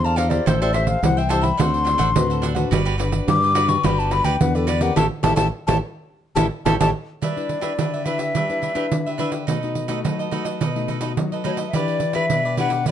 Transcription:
Already playing: E2 D4 A4 C5
0.04 D5 F5 A5 A#5, pandeiro
0.16 D4 A4 C5 D5 F5 A#5, pandeiro
0.29 E4 G4 C5 D5 F5 A#5, pandeiro
0.46 A1 A3 A4 C5 E5 G5, pandeiro
0.62 E4 G4 A4 C5 D5 E5 G5, pandeiro
0.73 E4 G4 A4 C5 E5 G5, pandeiro
0.87 F5, pandeiro
1.03 C2 E3 E4 G4 C5 F#5, pandeiro
1.17 C5 E5 G5, pandeiro
1.29 E4 G4 A4 C5 E5 G5 A5, pandeiro
1.41 C5 E5 G5 B5, pandeiro
1.57 D2 D3 C4 D4 F#4 A4 C5 F#5 C6, pandeiro
1.74 pandeiro
1.85 D4 A4 C5 F#5, pandeiro
1.98 A1 D4 A4 C5 F#5, pandeiro
2.16 D2 A2 C4 F#4 B4, pandeiro
2.30 A4 C5 F#5, pandeiro
2.42 D4 A4 C5 F#5, pandeiro
2.55 D4 F#4 A4 B4 C5 F#5, pandeiro
2.71 G1 G3 F#4 G4 B4 D5, pandeiro
2.85 F#4 G4 B4 D5, pandeiro
2.97 D4 F#4 G4 B4 D5, pandeiro
3.12 pandeiro
3.28 G2 D3 D6, pandeiro
3.42 G4 B4 D5, pandeiro
3.55 D4 F#4 G4 B4 D5, pandeiro
3.68 G4 B4 D5 C#6, pandeiro
3.83 G1 G3 D4 F#4 G4 B4 D5 B5, pandeiro
3.99 A5, pandeiro
4.11 F#4 G4 B4 D5 B5, pandeiro
4.24 D2 F#4 G4 B4 D5 G5, pandeiro
4.41 E2 D3 D4 F#4 B4 F#5, pandeiro
4.55 G4 A4 B4 D5, pandeiro
4.67 F#4 G4 B4 D5, pandeiro
4.80 C#4 G4 A#4 B4 D5 F#5, pandeiro
4.96 A1 E4 G4 A4 C#5 A5, pandeiro
5.23 A1 E4 G4 A4 C#5 A5, pandeiro
5.36 A1 E4 G4 A4 C#5 A5, pandeiro
5.67 A1 E4 G4 A4 C#5 A5, pandeiro
6.35 A1 E4 G4 A4 C#5 A5, pandeiro
6.65 A1 E4 G4 A4 C#5 A5, pandeiro
6.80 A1 E4 G4 A4 C#5 A5, pandeiro
7.22 G3 D4 G4 B4 D5 E5, pandeiro
7.37 D4 E4 B4, pandeiro
7.49 pandeiro
7.61 D4 E4 G4 B4 E5, pandeiro
7.78 D3 D4 G4 B4 E5, pandeiro
7.94 G4 B4 E5, pandeiro
8.05 D4 E4 G4 B4 E5, pandeiro
8.18 G4 B4 E5, pandeiro
8.35 G3 D4 G4 B4 E5, pandeiro
8.49 D4 E4 B4, pandeiro
8.62 D4 G4 B4 E5, pandeiro
8.75 D4 E4 G4 B4 E5, pandeiro
8.91 D3, pandeiro
9.06 G4 B4 E5, pandeiro
9.18 D4 E4 G4 B4 E5, pandeiro
9.31 G4 B4 E5, pandeiro
9.47 B2 A3 D#4 F#4 A4 B4 D#5, pandeiro
9.63 A3 D#4 F#4, pandeiro
9.75 pandeiro
9.88 A3 D#4 F#4 A4 B4 D#5, pandeiro
10.04 F#3 D#4 A4 B4 D#5, pandeiro
10.19 A4 B4 D#5, pandeiro
10.31 A3 D#4 F#4 A4 B4 D#5, pandeiro
10.45 A4 B4 D#5, pandeiro
10.61 B2 D#4 A4 B4 D#5, pandeiro
10.76 A3 D#4 F#4, pandeiro
10.88 D#4 A4 B4 D#5, pandeiro
11.01 A3 D#4 F#4 A4 B4 D#5, pandeiro
11.17 F#3, pandeiro
11.32 A4 B4 D#5, pandeiro
11.44 A3 D#4 F#4 A4 B4 C#5 D#5, pandeiro
11.57 A4 B4 D#5, pandeiro
11.68 E5
11.73 E3 D4 E4 G4 B4 D5, pandeiro
11.88 pandeiro
12.00 pandeiro
12.13 D4 E4 G4 B4 D5 E5, pandeiro
12.30 B2 E4 G4 B4 D5, pandeiro
12.45 G4 B4 D5, pandeiro
12.57 D4 E4 G4 B4 D5 F#5, pandeiro
12.70 G4 B4 D5, pandeiro
12.86 E4 G4, pandeiro

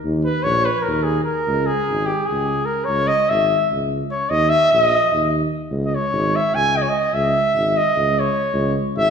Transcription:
0.04 D#2
0.25 B4
0.43 A#1 C#5
0.65 B4
0.82 A#4
0.87 D#2
1.03 G#4
1.24 A#4
1.47 C#2
1.66 G#4
1.88 G#1
2.06 G4
2.26 C#2 G#4
2.66 A#4
2.85 C#2 C#5
3.08 D#5
3.29 G#1 E5
3.71 C#2
4.11 C#5
4.30 D#2 D#5
4.49 E5
4.71 A#1 E5
4.82 D#5
5.13 D#2
5.71 C#2
5.86 D#5
5.95 C#5
6.12 G#1
6.36 E5
6.54 C#2 G#5
6.77 D#5
6.82 C#5
6.89 D#5
7.14 C#2 E5
7.55 G#1
7.77 D#5
7.97 C#2
8.20 C#5
8.54 C#2
8.95 G#1 E5

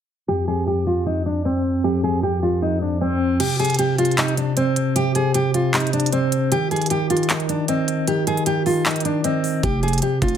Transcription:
0.28 F2 G4
0.48 F2 G#4
0.67 F2 G4
0.86 F2 F4
1.06 F2 D#4
1.26 D4
1.45 C4
1.84 F2 G4
2.04 F2 G#4
2.23 F2 G4
2.43 F2 F4
2.62 F2 D#4
2.82 D4
3.01 C4
3.40 C3 G4, closed hi-hat, crash
3.59 C3 G#4, closed hi-hat
3.65 closed hi-hat
3.70 closed hi-hat
3.74 closed hi-hat
3.79 C3 G4, closed hi-hat
3.98 C3 F4, closed hi-hat
4.05 closed hi-hat
4.11 closed hi-hat
4.18 D#4, clap, closed hi-hat
4.28 closed hi-hat
4.37 D4, closed hi-hat
4.57 C4 C5, closed hi-hat
4.76 closed hi-hat
4.96 C3 G4, closed hi-hat
5.15 C3 G#4, closed hi-hat
5.34 C3 G4, closed hi-hat
5.54 C3 F4, closed hi-hat
5.74 C3 D#4, clap, closed hi-hat
5.80 closed hi-hat
5.87 closed hi-hat
5.93 D4, closed hi-hat
6.00 closed hi-hat
6.06 closed hi-hat
6.12 C4 C5, closed hi-hat
6.32 closed hi-hat
6.52 D#3 G4, closed hi-hat
6.71 D#3 G#4, closed hi-hat
6.76 closed hi-hat
6.82 closed hi-hat
6.86 closed hi-hat
6.90 D#3 G4, closed hi-hat
7.10 D#3 F4, closed hi-hat
7.17 closed hi-hat
7.23 closed hi-hat
7.29 D#3 D#4, clap, closed hi-hat
7.40 closed hi-hat
7.49 D4, closed hi-hat
7.68 C4 D#5, closed hi-hat
7.88 closed hi-hat
8.07 D#3 G4, closed hi-hat
8.27 D#3 G#4, closed hi-hat
8.37 closed hi-hat
8.46 D#3 G4, closed hi-hat
8.66 D#3 F4, open hi-hat
8.85 D#3 D#4, clap, closed hi-hat
8.91 closed hi-hat
8.96 closed hi-hat
9.00 closed hi-hat
9.05 D4, closed hi-hat
9.24 C4 D#5, closed hi-hat
9.44 open hi-hat
9.63 F1 C3 G4, kick, closed hi-hat
9.83 C3 G#4, closed hi-hat
9.88 closed hi-hat
9.93 closed hi-hat
9.98 closed hi-hat
10.02 C3 G4, closed hi-hat
10.22 F1 C3 F4, kick, closed hi-hat
10.28 closed hi-hat

